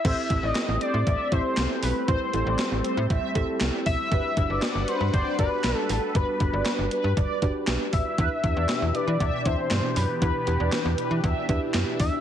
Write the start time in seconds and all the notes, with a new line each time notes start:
Already playing: E5
0.05 A1 G3 A3 C4 E4 G4 A4 C5, kick, closed hi-hat, crash
0.30 A1 C4 E4 G4 A4, kick, closed hi-hat
0.43 A1 D5 D#5
0.55 snare, clap, closed hi-hat
0.68 A1
0.81 C5 D5, closed hi-hat
0.94 A2
1.07 A1 E5, kick, closed hi-hat
1.32 A1 C4 E4 G4 A4 C5 E5, kick, closed hi-hat
1.57 C2, snare, clap, closed hi-hat
1.83 B1 B4, open hi-hat
2.08 A1 C4 E4 G4 B4 C5, kick, closed hi-hat
2.33 A1 C4 E4 G4 A4, closed hi-hat
2.46 A1 D5
2.59 snare, clap, closed hi-hat
2.72 A1
2.84 C5, closed hi-hat
2.97 A2
3.10 A1 E5, kick, closed hi-hat
3.35 A1 C4 E4 G4 A4 E5, kick, closed hi-hat
3.61 C2, snare, clap, closed hi-hat
3.86 B1 E5, kick, open hi-hat
4.12 G1 D4 F#4 G4 B4 F#5, kick, closed hi-hat
4.37 G1 D4 F#4 G4 B4, kick, closed hi-hat
4.50 G1 D5
4.62 D5, snare, clap, closed hi-hat
4.75 G1
4.88 B4 C5, closed hi-hat
5.01 G2
5.13 G1 C5 D5, kick, closed hi-hat
5.39 G1 D4 F#4 G4 B4 D5, kick, closed hi-hat
5.64 B1, snare, clap, closed hi-hat
5.77 A4
5.90 A1 A4, open hi-hat
6.15 G1 D4 F#4 G4 B4, kick, closed hi-hat
6.40 G1 D4 F#4 G4 B4, kick, closed hi-hat
6.53 G1 D5
6.66 snare, clap, closed hi-hat
6.79 G1
6.91 B4, closed hi-hat
7.04 G2
7.17 G1 D5, kick, closed hi-hat
7.42 G1 D4 F#4 G4 B4 D5, kick, closed hi-hat
7.67 B1, snare, clap, closed hi-hat
7.93 A1 E5, kick, open hi-hat
8.18 E2 B2 E3 D4 E4 G4 B4, kick, closed hi-hat
8.44 E2 D4 E4 G4 B4, kick, closed hi-hat
8.57 E2 D5
8.69 snare, clap, closed hi-hat
8.82 E2
8.95 B4 D5, closed hi-hat
9.07 E3
9.20 E2 E5, kick, closed hi-hat
9.45 E2 D4 E4 G4 C5 D5 E5, kick, closed hi-hat
9.71 G2, snare, clap, closed hi-hat
9.96 F#2 B4, open hi-hat
10.22 E2 D4 E4 G4 B4, kick, closed hi-hat
10.47 E2 D4 E4 G4 B4, closed hi-hat
10.60 E2 D5
10.72 snare, clap, closed hi-hat
10.85 E2
10.98 B4, closed hi-hat
11.11 E3
11.24 E2 E5, kick, closed hi-hat
11.49 E2 D4 E4 G4 B4 E5, kick, closed hi-hat
11.74 F#2, snare, clap, closed hi-hat
12.00 E2 E5, kick, open hi-hat